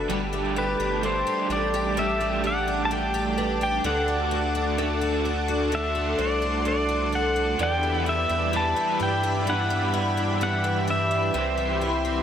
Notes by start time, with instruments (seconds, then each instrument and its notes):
Already playing: twelve-string acoustic guitar B2 A3 D4 F#4
0.09 analog synth bass G1, overdriven electric guitar G3 A3 D4 G4, twelve-string acoustic guitar G3, analog synth pad G4 D5 A5 D6
0.33 twelve-string acoustic guitar A3
0.56 twelve-string acoustic guitar G4, synth bell A4, pedal steel guitar B4
0.79 analog synth bass G1, twelve-string acoustic guitar D4
1.02 overdriven electric guitar G3 A3 D4, twelve-string acoustic guitar A3, pedal steel guitar C5
1.06 overdriven electric guitar G4
1.27 twelve-string acoustic guitar G4
1.49 analog synth bass A1, twelve-string acoustic guitar D4, pedal steel guitar D5
1.74 twelve-string acoustic guitar G4
1.94 overdriven electric guitar G3 A3, twelve-string acoustic guitar G3
1.99 overdriven electric guitar D4 G4, pedal steel guitar E5
2.20 twelve-string acoustic guitar A3
2.44 synth bell G4, twelve-string acoustic guitar G4, pedal steel guitar F#5
2.68 twelve-string acoustic guitar D4
2.85 pedal steel guitar A5
2.91 twelve-string acoustic guitar A3, pedal steel guitar G5
3.14 twelve-string acoustic guitar G4
3.38 twelve-string acoustic guitar D4, synth bell B4
3.61 twelve-string acoustic guitar G4, pedal steel guitar G5
3.84 analog synth bass D2, overdriven electric guitar D3 A3 D4 F#4, twelve-string acoustic guitar D3, analog synth pad F#5, pedal steel guitar F#5
4.08 twelve-string acoustic guitar A3
4.31 twelve-string acoustic guitar F#4
4.55 twelve-string acoustic guitar D4
4.77 overdriven electric guitar D3 A3 D4 F#4, twelve-string acoustic guitar A3, synth bell A4
5.01 twelve-string acoustic guitar F#4
5.25 twelve-string acoustic guitar D4
5.48 twelve-string acoustic guitar F#4
5.70 overdriven electric guitar D3 A3, twelve-string acoustic guitar D3, analog synth pad C6
5.75 overdriven electric guitar D4 F#4, pedal steel guitar E5
5.95 twelve-string acoustic guitar A3
6.18 analog synth bass C2, twelve-string acoustic guitar F#4, synth bell C5, pedal steel guitar D5
6.42 twelve-string acoustic guitar D4
6.65 twelve-string acoustic guitar A3, pedal steel guitar D5
6.89 twelve-string acoustic guitar F#4
7.12 twelve-string acoustic guitar D4, pedal steel guitar F#5
7.36 twelve-string acoustic guitar F#4
7.58 analog synth bass E2, twelve-string acoustic guitar E2, overdriven electric guitar E3 G3 D4 E4 B4, analog synth pad G4 E5 B5, synth bell D5
7.63 pedal steel guitar G5
7.83 twelve-string acoustic guitar G3
8.06 twelve-string acoustic guitar E4, pedal steel guitar E5
8.29 analog synth bass E2, twelve-string acoustic guitar D4
8.52 twelve-string acoustic guitar E3, overdriven electric guitar G3 D4 E4 B4, synth bell D5
8.56 pedal steel guitar A5
8.76 twelve-string acoustic guitar E4
9.00 analog synth bass G2, twelve-string acoustic guitar D4, pedal steel guitar G5
9.23 twelve-string acoustic guitar E4
9.45 twelve-string acoustic guitar E2, overdriven electric guitar G3 D4
9.50 overdriven electric guitar E4 B4, pedal steel guitar F#5
9.70 twelve-string acoustic guitar G3
9.94 twelve-string acoustic guitar E4
10.17 twelve-string acoustic guitar D4
10.41 twelve-string acoustic guitar E3, pedal steel guitar F#5
10.64 twelve-string acoustic guitar E4
10.88 twelve-string acoustic guitar D4, pedal steel guitar E5
11.11 twelve-string acoustic guitar E4
11.34 analog synth bass C2, overdriven electric guitar C3 E3 G3 C4 E4 C5, twelve-string acoustic guitar C3, analog synth pad C5 C6
11.58 twelve-string acoustic guitar G3
11.81 twelve-string acoustic guitar E4
12.05 twelve-string acoustic guitar C4